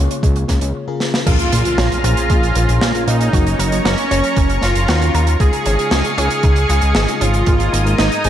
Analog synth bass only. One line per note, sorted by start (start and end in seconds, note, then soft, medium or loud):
0.23 0.45 C#2 loud
0.49 0.60 C#2 loud
0.62 0.73 C#2 medium
1.26 1.37 A#1 loud
1.52 1.63 A#2 medium
1.78 1.89 A#1 medium
2.04 2.15 A#1 loud
2.30 2.52 A#1 medium
2.56 2.67 A#1 loud
2.69 2.80 A#1 medium
2.81 2.93 A#2 medium
3.07 3.29 A#2 medium
3.33 3.55 F#1 loud
3.59 3.81 F#1 medium
3.85 3.96 F#1 loud
4.11 4.22 F#1 medium
4.37 4.59 F#1 loud
4.63 4.74 F#1 medium
4.76 4.87 F#1 medium
4.88 5.10 D#2 medium
5.14 5.36 D#2 medium
5.40 5.51 C#2 loud
5.66 5.77 G#1 medium
5.92 6.03 C#2 medium
6.18 6.29 C#2 loud
6.44 6.66 C#2 medium
6.69 6.80 C#2 loud
6.82 6.93 C#2 medium
6.95 7.06 G#1 medium
7.21 7.43 G#1 medium
7.47 7.69 G#1 loud
7.73 7.95 G#1 medium
7.99 8.10 G#1 medium
8.24 8.29 G#1 medium